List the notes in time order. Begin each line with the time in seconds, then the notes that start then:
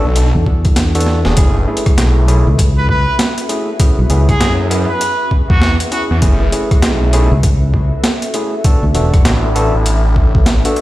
Already playing: D4 A4
0.05 B1 B4 E5
0.16 closed hi-hat
0.35 E2
0.46 kick
0.65 kick, closed hi-hat
0.76 snare, closed hi-hat
0.95 B3 D4 F#4 A4, closed hi-hat
1.00 closed hi-hat
1.06 snare
1.25 E1 B3 D4 F#4 G#4, snare
1.37 F#1 A3 C#4 E4 G#4, kick, closed hi-hat
1.68 A3 C#4 E4 G#4
1.77 closed hi-hat
1.86 kick, cross-stick, closed hi-hat
1.96 B1 F#4, snare, closed hi-hat
2.28 A3 C#4 E4 G#4, closed hi-hat
2.47 C#2
2.59 kick, closed hi-hat
2.78 B4
2.89 B4, kick
3.19 snare, closed hi-hat
3.38 closed hi-hat
3.49 A3 C#4 E4 G#4, closed hi-hat
3.80 B3 C#4 E4 G#4, kick, closed hi-hat
3.99 B1 G#4
4.05 B4
4.10 C#2 B3 C#4 E4 G#4, closed hi-hat
4.29 G#4, kick, cross-stick, closed hi-hat
4.40 F#2, snare, closed hi-hat
4.70 B3 C#4 E4 G#4, closed hi-hat
4.89 B4
5.01 closed hi-hat
5.31 kick
5.50 E2 F#4, kick
5.61 snare
5.80 closed hi-hat
5.91 B3 C#4 E4 F#4 G#4, closed hi-hat
6.10 E2 F#4
6.22 F#1 A3 C#4 E4 G#4, kick, closed hi-hat
6.42 A4
6.52 A3 C#4 E4 G#4, closed hi-hat
6.71 F#4, kick, cross-stick, closed hi-hat
6.82 B1, snare, closed hi-hat
7.13 A3 C#4 E4 G#4, closed hi-hat
7.32 C#2
7.43 kick, closed hi-hat
7.74 kick
8.04 snare, closed hi-hat
8.22 closed hi-hat
8.34 A3 C#4 E4 G#4, closed hi-hat
8.64 B3 D4 F#4 A4, kick, closed hi-hat
8.83 D2
8.94 E1 B3 D4 F#4 A4, closed hi-hat
9.14 kick, cross-stick, closed hi-hat
9.25 A1, snare, closed hi-hat
9.55 B3 D4 F#4 A4, closed hi-hat
9.75 A1 B4
9.86 closed hi-hat
10.16 kick
10.35 kick
10.46 snare, closed hi-hat
10.65 B3 D4 F#4 A4, closed hi-hat
10.76 closed hi-hat